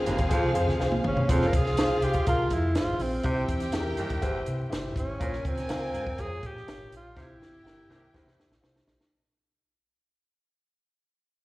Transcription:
Already playing: C4 F4 G#4 C5 F5
0.06 G1 D#2, closed hi-hat
0.18 G#1, kick, closed hi-hat
0.28 F2 F4 G#4 C5, kick, closed hi-hat
0.44 C2
0.54 F2 F4 G#4 C5, closed hi-hat
0.68 C#2, snare
0.79 C2 F4 G#4 C5, snare
0.92 high tom
1.04 G1 C#4, mid tom
1.17 floor tom
1.28 F1 F2 C4 F4 G#4 C5 F5, kick, closed hi-hat
1.41 snare
1.48 A#4
1.53 C2 G#4, kick, closed hi-hat
1.66 snare
1.77 F4 G#4 C5, snare, closed hi-hat
2.02 C2 G4, closed hi-hat
2.13 kick, closed hi-hat
2.26 C2 F4 G#4 A#4, kick, closed hi-hat
2.50 F2 E4, kick, closed hi-hat
2.75 G#1 F4 G#4 C5, snare, closed hi-hat
2.99 A#1 C4, open hi-hat
3.23 C2 C3 E4 G4 C5 G5, kick, closed hi-hat
3.48 E2, kick, closed hi-hat
3.60 snare, closed hi-hat
3.72 E2 E4 G4 G#4, snare, closed hi-hat
3.80 A#4
3.97 D#2 G2, closed hi-hat
4.10 kick, closed hi-hat
4.21 G1 E2 E4 G4 C5, kick, closed hi-hat
4.46 C3, closed hi-hat
4.70 G1 E4 G4 C5, snare, closed hi-hat
4.96 G#1 C#4, kick, closed hi-hat
5.19 A#1 A#2 F4 A#4 C5 G#5, kick, closed hi-hat
5.27 C#5
5.33 snare
5.45 C#2 C4, kick, closed hi-hat
5.58 snare, closed hi-hat
5.69 C#2 F4 A#4 F5, snare, closed hi-hat
5.94 G2, closed hi-hat
6.07 kick
6.18 F2 F4 G#4 A#4 C5, kick, closed hi-hat
6.25 C#5
6.42 A#2, kick, closed hi-hat
6.46 G4
6.57 snare
6.66 G#1 F4 A#4 C#5, snare, closed hi-hat
6.91 A#1, closed hi-hat
6.96 F4
7.16 C2 C3 E4 G4 C5 G5, kick, snare
7.22 E4
7.40 G1, snare
7.64 G1 E4 G4 A#4, snare
7.89 C2 D#2 E3 C4 G4, snare
8.13 G1 E2 E4 G4 C5, kick, snare
8.26 C2, snare
8.40 snare
8.50 A#1, snare
8.61 C2 E4 G4 C5, snare
8.76 snare
8.87 A#1, snare
9.01 snare

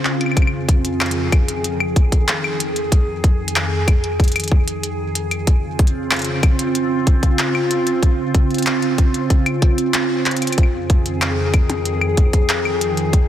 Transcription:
Already playing: C#3 C4 F4
0.05 clap
0.21 closed hi-hat, claves
0.26 claves
0.32 claves
0.37 F2 D#3 G#4, kick, closed hi-hat, claves
0.42 claves
0.47 claves
0.69 kick, closed hi-hat
0.85 closed hi-hat
1.01 clap, closed hi-hat, claves
1.06 closed hi-hat
1.11 closed hi-hat
1.32 kick, closed hi-hat, claves
1.48 closed hi-hat
1.64 closed hi-hat
1.80 claves
1.96 kick, closed hi-hat
2.12 kick, closed hi-hat
2.28 clap, closed hi-hat
2.44 claves
2.60 closed hi-hat
2.76 closed hi-hat
2.92 kick, closed hi-hat
3.24 kick, closed hi-hat
3.48 closed hi-hat
3.56 clap, closed hi-hat, claves
3.88 kick, closed hi-hat, claves
4.04 closed hi-hat
4.20 kick, closed hi-hat
4.24 closed hi-hat
4.28 closed hi-hat
4.32 closed hi-hat
4.36 closed hi-hat, claves
4.40 closed hi-hat
4.44 closed hi-hat
4.48 kick, closed hi-hat
4.68 closed hi-hat
4.83 closed hi-hat
5.15 closed hi-hat
5.31 closed hi-hat, claves
5.47 C#3 C4 F4, kick, closed hi-hat
5.79 kick, closed hi-hat
5.87 closed hi-hat
6.11 clap, closed hi-hat, claves
6.14 closed hi-hat
6.16 closed hi-hat
6.19 closed hi-hat
6.22 closed hi-hat
6.25 closed hi-hat
6.43 kick, closed hi-hat, claves
6.59 closed hi-hat
6.75 closed hi-hat
7.07 kick, closed hi-hat
7.23 kick, closed hi-hat
7.39 clap, closed hi-hat
7.55 claves
7.71 closed hi-hat
7.87 closed hi-hat
8.03 kick, closed hi-hat
8.35 kick, closed hi-hat
8.51 closed hi-hat
8.54 closed hi-hat
8.58 closed hi-hat
8.63 clap, closed hi-hat
8.66 closed hi-hat
8.82 closed hi-hat
8.98 kick, closed hi-hat
9.14 closed hi-hat
9.30 kick, closed hi-hat
9.46 closed hi-hat, claves
9.62 kick, closed hi-hat
9.78 closed hi-hat
9.94 clap, closed hi-hat
10.26 clap, closed hi-hat
10.31 closed hi-hat
10.37 closed hi-hat
10.42 closed hi-hat, claves
10.47 closed hi-hat
10.53 closed hi-hat, claves
10.58 F2 D#3 G#4, kick, closed hi-hat
10.63 claves
10.90 kick, closed hi-hat
11.06 closed hi-hat
11.22 clap, closed hi-hat, claves
11.54 kick, closed hi-hat, claves
11.70 closed hi-hat, percussion blips
11.85 closed hi-hat
12.01 claves
12.17 kick, closed hi-hat
12.33 kick, closed hi-hat
12.49 clap, closed hi-hat
12.65 claves
12.81 closed hi-hat
12.97 closed hi-hat
13.13 kick, closed hi-hat

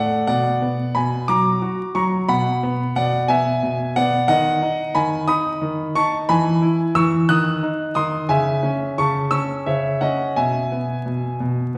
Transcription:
Already playing: A3 D5 F#5
0.27 B2 D5 F#5
0.62 B3
0.95 B2 G#5 B5
1.28 F#3 A#5 D6
1.62 F#4
1.95 F#3 A#5 C#6
2.28 B2 F#5 B5
2.63 B3
2.96 B2 D5 F#5
3.28 B3 E5 G#5
3.63 B2
3.96 B3 D5 F#5
4.28 D#3 D#5 F#5
4.62 D#4
4.95 D#3 G#5 B5
5.28 D#4 B5 D#6
5.62 D#3
5.95 D#4 A5 C#6
6.29 E3 G#5 B5
6.62 E4
6.95 E3 C#6 E6
7.29 D#3 D#6 F#6
7.63 D#4
7.95 D#3 C6 D#6
8.29 C#3 E5 G#5
8.63 C#4
8.98 C#3 A5 C#6
9.31 C#4 C#6 E6
9.66 C#3 C#5 E5
10.01 C#4 D#5 F#5
10.36 B2 E5 G#5
10.72 B3
11.06 B2
11.40 B2

